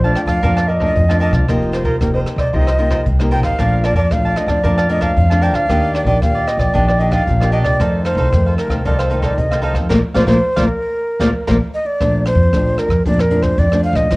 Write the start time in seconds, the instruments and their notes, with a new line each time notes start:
Already playing: upright bass A#1, nylon-string guitar F2, flute C5
0.04 nylon-string guitar F3 A3 D4, cavaquinho D5 F5 A5, closed hi-hat
0.15 flute G5, cross-stick, closed hi-hat
0.25 upright bass F2, cavaquinho D5 F5 A5, flute F5, kick, cross-stick, closed hi-hat
0.42 upright bass F2, nylon-string guitar A#2 F3 A3 D4, cavaquinho A#4 D5 F5 A5, kick, closed hi-hat
0.56 cavaquinho D5 F5 A5, cross-stick, closed hi-hat
0.67 cavaquinho A#4 D5 F5 A5, flute D#5, closed hi-hat
0.80 nylon-string guitar F3 A3 D4, cavaquinho A#4 D5 F5 A5, kick, cross-stick, closed hi-hat
0.96 nylon-string guitar F2, upright bass F2, kick, closed hi-hat
1.09 nylon-string guitar F3 A3 D4, cavaquinho D5 F5 A5, cross-stick
1.20 cavaquinho A#4 D5 F5 A5, flute D#5, closed hi-hat
1.31 upright bass C2, cavaquinho D5 F5 A5, kick, cross-stick, closed hi-hat
1.48 upright bass F1, nylon-string guitar F3 A#3 D#4 G4, cavaquinho F4 A#4 C5 D#5, kick, cross-stick, closed hi-hat
1.62 closed hi-hat
1.73 cavaquinho F4 A#4 C5 D#5, flute C5, cross-stick, closed hi-hat
1.83 upright bass C2, cavaquinho F4 A#4 C5 D#5, flute A#4, kick
2.00 upright bass F1, nylon-string guitar C3 A#3 D#4 G4, flute A#4, kick, cross-stick, closed hi-hat
2.14 cavaquinho A#4 C5 D#5, flute C5
2.26 cross-stick, closed hi-hat
2.36 upright bass C2, cavaquinho A#4 C5 D#5, flute D5, kick, cross-stick
2.53 upright bass C2, nylon-string guitar F3 A#3 D#4 G4, cavaquinho F4 A#4 C5 D#5, flute D#5, kick, closed hi-hat
2.67 cavaquinho A#4 C5 D#5, cross-stick, closed hi-hat
2.78 nylon-string guitar A#3 D#4 G4, cavaquinho F4 A#4 C5 D#5, closed hi-hat
2.90 cavaquinho F4 A#4 C5 D#5, kick, cross-stick
3.06 upright bass C2, nylon-string guitar C3, kick, closed hi-hat
3.19 nylon-string guitar A#3 D#4 G4, cavaquinho A#4 C5 D#5, cross-stick, closed hi-hat
3.31 cavaquinho F4 A#4 C5 D#5, flute G5, closed hi-hat
3.41 upright bass A1, cavaquinho A#4 C5 D#5, flute F5, kick, cross-stick, closed hi-hat
3.58 upright bass A#1, nylon-string guitar A#2 F3 A3 D4, cavaquinho A#4 D5 F5 A5, kick, cross-stick, closed hi-hat
3.84 cavaquinho A#4 D5 F5 A5, flute D5, cross-stick, closed hi-hat
3.94 upright bass F2, cavaquinho A#4 D5 F5 A5, flute D5, kick, closed hi-hat
4.11 upright bass A#1, nylon-string guitar F2 F3 A3 D4, flute F5, kick, cross-stick, closed hi-hat
4.25 cavaquinho D5 F5 A5, closed hi-hat
4.36 nylon-string guitar F3 A3 D4, flute D#5, cross-stick, closed hi-hat
4.46 upright bass F2, nylon-string guitar F3 A3 D4, cavaquinho D5 F5 A5, flute D5, kick, cross-stick, closed hi-hat
4.63 upright bass F2, nylon-string guitar A#2 F3 A3 D4, cavaquinho A#4 D5 F5 A5, kick, closed hi-hat
4.78 cavaquinho D5 F5 A5, cross-stick, closed hi-hat
4.89 nylon-string guitar F3 A3 D4, cavaquinho A#4 D5 F5 A5, flute D#5, closed hi-hat
5.01 cavaquinho A#4 D5 F5 A5, flute F5, kick, cross-stick, closed hi-hat
5.17 upright bass F2, nylon-string guitar F2, kick, closed hi-hat
5.30 nylon-string guitar F3 A3 D4, cavaquinho D5 F5 A5, cross-stick
5.41 cavaquinho A#4 D5 F5 A5, flute G5, closed hi-hat
5.52 upright bass D2, cavaquinho D5 F5 A5, flute F5, kick, cross-stick, closed hi-hat
5.68 upright bass D#2, nylon-string guitar D#3 A#3 D4 G4, cavaquinho D4 G4 D5 D#5, kick, cross-stick, closed hi-hat
5.84 closed hi-hat
5.93 cavaquinho D4 G4 D5 D#5, flute D5, cross-stick, closed hi-hat
6.04 upright bass A#1, cavaquinho D4 G4 D5 D#5, flute D5, kick
6.22 upright bass D#2, nylon-string guitar A#2 A#3 D4 G4, flute F5, kick, cross-stick, closed hi-hat
6.35 cavaquinho G4 D5 D#5
6.47 flute D#5, cross-stick, closed hi-hat
6.57 upright bass A#1, cavaquinho G4 D5 D#5, flute D5, kick, cross-stick
6.73 upright bass A#1, nylon-string guitar D#3 A#3 D4 G4, cavaquinho D4 G4 D5 D#5, kick, closed hi-hat
6.88 cavaquinho G4 D5 D#5, cross-stick, closed hi-hat
6.99 nylon-string guitar A#3 D4 G4, cavaquinho D4 G4 D5 D#5, flute D#5, closed hi-hat
7.11 cavaquinho D4 G4 D5 D#5, flute F5, kick, cross-stick
7.27 upright bass A#1, nylon-string guitar A#2, kick, closed hi-hat
7.40 nylon-string guitar A#3 D4 G4, cavaquinho G4 D5 D#5, cross-stick, closed hi-hat
7.52 cavaquinho D4 G4 D5 D#5, flute D#5, closed hi-hat
7.62 upright bass C2, cavaquinho G4 D5 D#5, flute D5, kick, cross-stick, closed hi-hat
7.79 upright bass F2, nylon-string guitar F2 D#3 A3 C4, cavaquinho D#4 A4 C5 F5, kick, cross-stick, closed hi-hat
8.05 cavaquinho D#4 A4 C5 F5, flute C5, cross-stick, closed hi-hat
8.15 upright bass C2, cavaquinho D#4 A4 C5 F5, kick, closed hi-hat
8.33 upright bass F2, nylon-string guitar C3 D#3 A3 C4, kick, cross-stick, closed hi-hat
8.46 cavaquinho A4 C5 F5, closed hi-hat
8.58 flute A#4, cross-stick, closed hi-hat
8.68 upright bass C2, nylon-string guitar D#3 A3 C4, cavaquinho A4 C5 F5, kick, cross-stick, closed hi-hat
8.85 upright bass C2, nylon-string guitar F2 D#3 A3 C4, cavaquinho D#4 A4 C5 F5, flute D5, kick, closed hi-hat
8.99 cavaquinho A4 C5 F5, flute C5, cross-stick, closed hi-hat
9.10 nylon-string guitar D#3 A3 C4, cavaquinho D#4 A4 C5 F5, closed hi-hat
9.22 cavaquinho D#4 A4 C5 F5, flute D5, kick, cross-stick, closed hi-hat
9.38 upright bass C2, nylon-string guitar C3, flute D#5, kick, closed hi-hat
9.51 nylon-string guitar D#3 A3 C4, cavaquinho A4 C5 F5, cross-stick
9.62 cavaquinho D#4 A4 C5 F5, flute D#5, closed hi-hat
9.73 upright bass F2, cavaquinho A4 C5 F5, kick, cross-stick, closed hi-hat
9.89 upright bass A#1, nylon-string guitar F3 A3 A#3, cavaquinho A#4 D5 F5, kick, snare
10.14 upright bass A#1, nylon-string guitar F3 A3 A#3, cavaquinho A#4 D5 F5, flute C5, kick, snare
10.25 upright bass A#1, nylon-string guitar F3 A3 A#3, cavaquinho A#4 D5 F5, flute C5, kick, snare
10.56 upright bass A#1, nylon-string guitar F3 A3 A#3, cavaquinho A#4 D5 F5, kick, snare
10.67 flute A#4
11.20 upright bass A#1, nylon-string guitar F3 A3 A#3, cavaquinho A#4 D5 F5, kick, snare
11.47 upright bass A#1, nylon-string guitar F3 A3 A#3, cavaquinho A#4 D5 F5, kick, snare
11.74 flute D#5
11.86 flute D5
12.00 upright bass A#1, nylon-string guitar A#2 F3 A3 D4, kick, cross-stick, closed hi-hat
12.26 flute C5, cross-stick, closed hi-hat
12.35 upright bass F2, kick
12.53 upright bass A#1, nylon-string guitar F2 F3 A3 D4, kick, cross-stick, closed hi-hat
12.67 closed hi-hat
12.78 flute A#4, cross-stick, closed hi-hat
12.88 upright bass F2, kick, cross-stick, closed hi-hat
13.05 upright bass F2, nylon-string guitar A#2 F3 A3 D4, flute D5, kick, closed hi-hat
13.19 flute A#4, cross-stick, closed hi-hat
13.30 nylon-string guitar F3 A3 D4, closed hi-hat
13.43 flute C5, kick, cross-stick, closed hi-hat
13.58 upright bass F2, nylon-string guitar F2, flute D5, kick, closed hi-hat
13.72 nylon-string guitar F3 A3 D4, cross-stick
13.83 flute F5, closed hi-hat
13.93 upright bass A#1, flute D#5, kick, cross-stick
14.11 upright bass A1, nylon-string guitar A2 F3 C4 D#4, kick, cross-stick, closed hi-hat